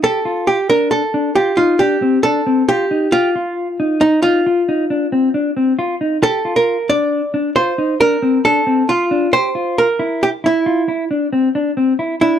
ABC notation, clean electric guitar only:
X:1
M:7/4
L:1/8
Q:1/4=136
K:Cmix
V:1 name="Clean electric guitar"
G F2 D2 D F _E D C D C F E | G F2 _E2 E F E D C D C F E | G F2 D2 D F _E D C D C F D | G F2 E2 E F E D C D C E D |]